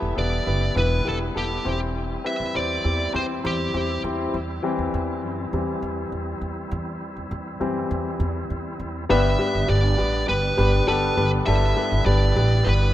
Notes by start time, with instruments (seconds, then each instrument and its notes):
Already playing: grand piano E3 B3 E4 G4 A4 B4, tonewheel organ G3 B3 E4
0.02 upright bass E1
0.16 upright bass E1, grand piano B3 E4 G4 B4, lead electric guitar D5
0.46 upright bass F#1, grand piano B3 E4 G4 B4
0.75 upright bass E1, grand piano B3 E4 G4 B4, lead electric guitar B4
1.05 upright bass E1, grand piano B3 E4 G4 B4
1.09 lead electric guitar A4
1.35 upright bass E1, grand piano B3 E4 G4 A4, lead electric guitar G4
1.65 upright bass E1, grand piano E3 C4 E4 G4 C5, tonewheel organ C4
2.24 grand piano C4 E4 G4 B4, lead electric guitar E5
2.40 upright bass E2
2.54 upright bass E2, grand piano C4 E4 G4 C5, lead electric guitar D5
2.84 upright bass E2, grand piano C4 E4 G4 D5
3.13 upright bass E2, grand piano C4 E4 G4 C5, lead electric guitar C5
3.44 upright bass E2, grand piano C4 E4 G4 C5, lead electric guitar G4
3.74 upright bass E2, grand piano C4 E4 G4 C5
4.04 upright bass E2, grand piano C4 E4 G4 C5
4.33 upright bass E2, tonewheel organ G3 C4 E4
4.63 grand piano E3 G3 C4
4.79 upright bass E2
4.94 upright bass E2
5.24 upright bass F#2
5.53 upright bass E2, grand piano E3 G3 C4
5.82 upright bass E2
6.12 upright bass E2
6.41 upright bass E2
6.71 upright bass E2
7.16 upright bass E2
7.31 upright bass E2
7.60 upright bass F#2, grand piano E3 G3 C4
7.91 upright bass E2
8.20 upright bass E2
8.50 upright bass E2
8.80 upright bass E2
9.09 upright bass G1, grand piano G2 G3 B3 D4 G4 B4, tonewheel organ G3 B3 D4, lead electric guitar E5
9.39 grand piano G3 B3 D4 G4 B4
9.55 upright bass G1
9.68 upright bass G1, grand piano G3 B3 D4 G4 D5, lead electric guitar D5
9.98 upright bass A1, grand piano G3 B3 D4 G4 B4
10.27 upright bass G1, grand piano G3 B3 D4 G4 B4, lead electric guitar B4
10.57 upright bass G1, grand piano G3 B3 D4 G4 B4
10.87 upright bass G1, grand piano G3 B3 D4 G4 A4, lead electric guitar B4
11.17 upright bass G1, grand piano G3 B3 D4 G4 B4
11.46 upright bass G1, grand piano G2 G3 B3 D4 G4 A4, tonewheel organ E4, lead electric guitar E5
11.76 grand piano G3 B3 D4 G4 B4
11.92 upright bass G1
12.06 upright bass G1, grand piano G3 B3 D4 G4 B4, lead electric guitar D5
12.36 upright bass A1, grand piano G3 B3 D4 G4 B4
12.65 upright bass G1, grand piano G3 B3 D4 G4 B4, lead electric guitar B4